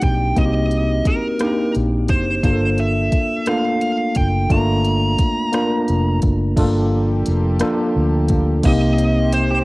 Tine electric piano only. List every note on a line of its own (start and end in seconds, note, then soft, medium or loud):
0.00 0.36 A#3 medium
0.00 0.38 C4 medium
0.00 1.41 D4 medium
0.00 0.38 D#4 medium
0.00 0.39 F#4 medium
0.00 0.46 G4 medium
0.36 1.08 A#3 medium
0.36 1.09 C4 medium
0.36 1.09 D#4 medium
0.36 0.44 F#4 medium
0.46 1.13 G4 medium
1.40 2.12 A#3 medium
1.40 2.12 D4 medium
1.40 2.13 D#4 medium
1.40 2.13 G4 medium
2.44 3.15 A#3 medium
2.44 3.16 D4 medium
2.44 3.16 F4 medium
2.44 2.51 G#4 medium
2.53 3.20 A4 medium
3.46 3.53 A3 soft
3.46 4.19 D4 medium
3.46 4.19 F4 medium
3.46 4.20 A4 medium
3.53 4.22 A#3 medium
4.50 4.52 A3 medium
4.50 5.24 A3 medium
4.50 5.23 D4 medium
4.50 5.23 F4 medium
4.56 5.25 A#3 medium
5.52 6.25 A#3 medium
5.52 6.25 D4 medium
5.52 6.26 F4 medium
5.52 6.26 A#4 medium
6.56 6.63 A3 medium
6.56 7.29 D4 medium
6.56 7.29 F4 medium
6.56 7.30 A4 loud
6.63 7.32 A#3 medium
7.60 8.32 A#3 medium
7.60 8.32 D4 medium
7.60 8.33 F4 medium
7.60 8.34 A4 medium
8.64 9.36 A#3 medium
8.64 9.36 C4 medium
8.64 9.37 D#4 medium
8.64 9.37 G4 medium